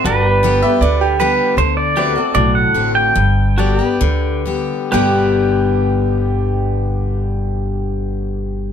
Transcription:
0.04 0.61 G1 medium
0.04 0.78 G2 medium
0.04 0.25 F#4 medium
0.04 0.32 A4 medium
0.04 1.16 B4 medium
0.04 1.58 D5 medium
0.25 1.57 G4 medium
0.32 1.57 B4 medium
0.43 0.61 D3 medium
0.43 0.62 G3 medium
0.43 0.62 B3 medium
0.43 0.61 G4 medium
0.62 0.82 B3 soft
0.62 0.81 G4 medium
0.62 0.81 E5 medium
0.81 1.38 D2 medium
0.81 1.18 D3 medium
0.81 1.00 D5 medium
1.01 1.47 G4 medium
1.20 1.56 D3 medium
1.20 1.56 G3 medium
1.20 1.57 B3 medium
1.20 1.57 G4 medium
1.20 1.57 B4 medium
1.57 2.15 D2 medium
1.57 1.95 D3 medium
1.57 1.77 C5 medium
1.77 2.34 D5 medium
1.96 2.15 D3 medium
1.96 2.15 A3 medium
1.96 2.15 C4 medium
1.96 2.14 F#4 medium
1.96 2.17 G4 medium
1.96 2.13 B4 medium
1.96 3.16 D5 medium
2.13 2.34 F#4 soft
2.13 3.15 F#4 medium
2.13 2.24 A#4 medium
2.18 2.35 C4 soft
2.24 3.15 A4 medium
2.35 2.69 B1 medium
2.35 3.11 A2 medium
2.35 2.55 D5 medium
2.55 2.95 F#5 medium
2.74 3.09 A1 medium
2.74 3.13 D3 medium
2.74 3.14 A3 medium
2.74 3.14 C4 medium
2.74 3.14 F#4 medium
2.95 4.41 G5 loud
3.15 3.79 G1 medium
3.15 3.96 G2 medium
3.58 3.78 D3 medium
3.58 3.78 G3 medium
3.58 3.79 B3 medium
3.58 3.81 F#4 medium
3.58 3.78 G4 medium
3.58 3.76 A4 medium
3.58 4.92 D5 medium
3.76 4.00 G4 medium
3.76 3.88 A#4 medium
3.81 4.01 B3 soft
3.81 4.91 G4 medium
3.88 4.91 B4 medium
4.01 4.69 D2 medium
4.01 4.44 D3 medium
4.46 4.90 D3 medium
4.46 4.90 G3 medium
4.46 4.91 B3 medium
4.46 4.91 G4 medium
4.92 8.72 G1 medium
4.92 8.72 G2 medium
4.92 8.72 B2 medium
4.92 8.72 D3 medium
4.92 8.72 G3 loud
4.92 8.72 B3 medium
4.92 8.72 G4 medium
4.92 8.72 B4 medium
4.92 8.72 D5 medium

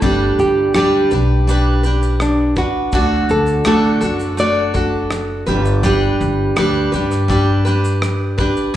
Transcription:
0.00 0.32 G1 loud
0.00 0.74 G3 medium
0.00 0.76 D4 medium
0.00 0.76 G4 medium
0.00 0.39 A4 medium
0.00 kick loud
0.00 shaker medium
0.04 0.76 B4 medium
0.39 0.69 G1 medium
0.39 0.74 G4 medium
0.39 shaker soft
0.74 1.05 D2 medium
0.74 1.12 G3 medium
0.74 1.12 D4 medium
0.74 2.25 G4 medium
0.74 1.12 G4 medium
0.74 1.10 B4 medium
0.74 cross-stick loud
0.74 shaker medium
1.11 2.53 B1 medium
1.11 1.47 D4 soft
1.11 1.49 G4 soft
1.11 1.48 B4 soft
1.11 shaker soft
1.47 1.84 G3 medium
1.47 1.85 D4 medium
1.47 1.84 G4 medium
1.47 1.82 B4 medium
1.47 shaker medium
1.83 2.59 D4 medium
1.83 2.58 G4 soft
1.83 2.55 B4 medium
1.83 shaker soft
2.03 shaker medium
2.20 2.58 D4 medium
2.20 cross-stick loud
2.20 shaker medium
2.56 2.93 D4 soft
2.56 3.33 F#4 medium
2.56 2.93 B4 medium
2.56 kick medium
2.56 shaker soft
2.92 3.23 D2 medium
2.92 3.65 D3 medium
2.92 3.65 A3 medium
2.92 3.66 D4 medium
2.92 3.66 F#4 medium
2.92 3.66 A4 medium
2.92 kick loud
2.92 shaker medium
3.29 3.60 D2 loud
3.29 3.66 A4 medium
3.29 shaker soft
3.47 shaker soft
3.65 3.96 A1 medium
3.65 4.02 D3 medium
3.65 4.02 A3 medium
3.65 4.03 D4 medium
3.65 4.01 F#4 medium
3.65 4.39 A4 medium
3.65 3.99 A4 medium
3.65 cross-stick loud
3.65 shaker medium
4.01 5.44 F#1 medium
4.01 4.38 D4 soft
4.01 4.38 F#4 soft
4.01 4.38 A4 soft
4.01 shaker medium
4.20 shaker soft
4.37 4.74 A3 medium
4.37 4.75 D4 medium
4.37 4.75 F#4 medium
4.37 4.73 A4 medium
4.37 5.89 D5 loud
4.37 shaker medium
4.74 5.50 D4 soft
4.74 5.48 F#4 soft
4.74 5.46 A4 medium
4.74 kick medium
4.74 shaker soft
5.11 cross-stick loud
5.11 shaker medium
5.46 6.07 G1 medium
5.46 5.83 D4 soft
5.46 5.84 G4 medium
5.46 5.84 B4 medium
5.46 shaker soft
5.65 shaker soft
5.83 6.55 G3 medium
5.83 6.56 D4 medium
5.83 6.57 G4 medium
5.83 7.99 G4 medium
5.83 6.58 B4 medium
5.83 kick loud
5.83 shaker medium
6.21 6.50 G1 loud
6.21 shaker soft
6.56 6.87 D2 medium
6.56 6.93 G3 medium
6.56 6.93 D4 medium
6.56 6.93 G4 medium
6.56 6.91 B4 medium
6.56 cross-stick loud
6.56 shaker medium
6.92 8.35 G2 medium
6.92 7.29 D4 soft
6.92 7.30 G4 medium
6.92 7.29 B4 medium
6.92 shaker medium
7.11 cross-stick soft
7.11 shaker soft
7.28 7.65 G3 medium
7.28 7.66 D4 medium
7.28 7.65 G4 medium
7.28 7.64 B4 medium
7.28 kick medium
7.28 shaker medium
7.65 8.40 D4 medium
7.65 8.39 G4 soft
7.65 8.37 B4 medium
7.65 shaker soft
7.85 shaker medium
8.02 cross-stick loud
8.02 shaker medium
8.38 8.75 D4 soft
8.38 8.75 G4 medium
8.38 8.75 B4 medium
8.38 kick medium
8.38 shaker medium
8.57 shaker soft

